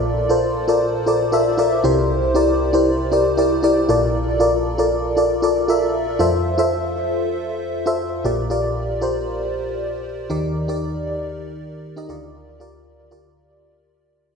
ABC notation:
X:1
M:4/4
L:1/16
Q:1/4=117
K:Bblyd
V:1 name="FM electric piano"
[FABd] z [FABc]2 z [FABd]2 z [FABd] z [FABe] z [FABd]2 [EGBc]2- | [EGBc] z [EGBd]2 z [EGBc]2 z [EGBd] z [EGBd] z [EGBd]2 [FABd]2- | [FABd] z [FABd]2 z [FABd]2 z [FABd] z [FABd] z [FABe]3 z | [FAce]2 z [FAce]4- [FAce] z4 z [FAce]2 z |
[FGBd] z [FGBd]3 z [FGBc]4- [FGBc] z4 z | [_EGBd]2 z [EGBd]4- [EGBd] z4 z [EGB_e] [FGBd]2- | [FGBd] z [FGBd]3 z [FGBd]4- [FGBd] z4 z |]
V:2 name="FM electric piano" clef=bass
[B,,,B,,]12- [B,,,B,,]2 [C,,C,]2- | [C,,C,]12- [C,,C,]2 [B,,,B,,]2- | [B,,,B,,]12- [B,,,B,,]2 z2 | F,,16 |
[B,,,B,,]16 | [_E,,_E,]12- [E,,E,]2 [D,,D,]2- | [D,,D,]12- [D,,D,]2 z2 |]